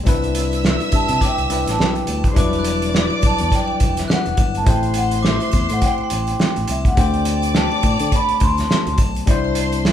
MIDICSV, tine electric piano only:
0, 0, Header, 1, 2, 480
1, 0, Start_track
1, 0, Tempo, 575816
1, 51, Time_signature, 4, 2, 24, 8
1, 8273, End_track
2, 0, Start_track
2, 0, Title_t, "Tine electric piano"
2, 0, Program_c, 0, 4
2, 0, Control_c, 0, 64, 127
2, 30, Note_on_c, 0, 55, 78
2, 44, Note_on_c, 0, 60, 69
2, 52, Note_on_c, 0, 62, 74
2, 60, Note_on_c, 0, 64, 70
2, 61, Control_c, 0, 64, 0
2, 73, Note_on_c, 0, 71, 90
2, 226, Control_c, 0, 64, 127
2, 1219, Note_off_c, 0, 55, 0
2, 1225, Note_off_c, 0, 60, 0
2, 1230, Note_off_c, 0, 62, 0
2, 1233, Note_off_c, 0, 64, 0
2, 1240, Note_off_c, 0, 71, 0
2, 1245, Note_on_c, 0, 55, 55
2, 1252, Note_on_c, 0, 60, 47
2, 1255, Note_on_c, 0, 62, 50
2, 1261, Note_on_c, 0, 64, 45
2, 1265, Note_on_c, 0, 71, 59
2, 1937, Note_off_c, 0, 55, 0
2, 1946, Note_off_c, 0, 62, 0
2, 1947, Note_on_c, 0, 55, 80
2, 1956, Note_on_c, 0, 62, 74
2, 1961, Note_off_c, 0, 64, 0
2, 1971, Note_on_c, 0, 64, 71
2, 1974, Note_off_c, 0, 60, 0
2, 1976, Note_off_c, 0, 71, 0
2, 1978, Note_on_c, 0, 54, 70
2, 1984, Control_c, 0, 64, 0
2, 1986, Note_on_c, 0, 71, 80
2, 2138, Control_c, 0, 64, 127
2, 3848, Note_off_c, 0, 55, 0
2, 3853, Note_off_c, 0, 62, 0
2, 3860, Note_off_c, 0, 64, 0
2, 3862, Note_on_c, 0, 57, 67
2, 3864, Note_off_c, 0, 54, 0
2, 3868, Note_off_c, 0, 71, 0
2, 3875, Note_on_c, 0, 60, 60
2, 3883, Note_on_c, 0, 64, 66
2, 3893, Note_on_c, 0, 67, 61
2, 3901, Note_on_c, 0, 72, 74
2, 3906, Control_c, 0, 64, 0
2, 4047, Control_c, 0, 64, 127
2, 5765, Note_off_c, 0, 57, 0
2, 5772, Note_off_c, 0, 60, 0
2, 5776, Note_off_c, 0, 64, 0
2, 5781, Note_off_c, 0, 67, 0
2, 5784, Note_off_c, 0, 72, 0
2, 5795, Note_on_c, 0, 57, 67
2, 5806, Note_on_c, 0, 60, 62
2, 5813, Note_on_c, 0, 62, 61
2, 5821, Note_on_c, 0, 67, 64
2, 5824, Control_c, 0, 64, 0
2, 5831, Note_on_c, 0, 72, 76
2, 5970, Control_c, 0, 64, 127
2, 7690, Note_off_c, 0, 57, 0
2, 7695, Note_off_c, 0, 60, 0
2, 7699, Note_off_c, 0, 62, 0
2, 7703, Note_off_c, 0, 67, 0
2, 7708, Note_off_c, 0, 72, 0
2, 7721, Note_on_c, 0, 55, 78
2, 7729, Note_on_c, 0, 60, 74
2, 7741, Note_on_c, 0, 62, 75
2, 7743, Control_c, 0, 64, 0
2, 7750, Note_on_c, 0, 64, 76
2, 7759, Note_on_c, 0, 72, 92
2, 7870, Control_c, 0, 64, 127
2, 8273, Note_off_c, 0, 55, 0
2, 8273, Note_off_c, 0, 60, 0
2, 8273, Note_off_c, 0, 62, 0
2, 8273, Note_off_c, 0, 64, 0
2, 8273, Note_off_c, 0, 72, 0
2, 8273, End_track
0, 0, End_of_file